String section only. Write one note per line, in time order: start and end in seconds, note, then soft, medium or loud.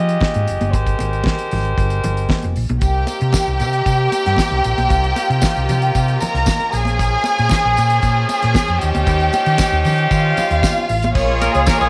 2.82 6.17 G4 medium
2.82 6.17 G5 medium
6.20 6.71 A#4 medium
6.20 6.71 A#5 medium
6.72 8.26 G#4 medium
6.72 8.26 G#5 medium
8.29 8.80 G#4 medium
8.29 8.80 G#5 medium
8.81 10.09 G4 medium
8.81 10.09 G5 medium
10.11 11.13 F4 medium
10.11 11.13 F5 medium
11.15 11.89 A#3 medium
11.15 11.89 G#4 medium
11.15 11.89 C#5 loud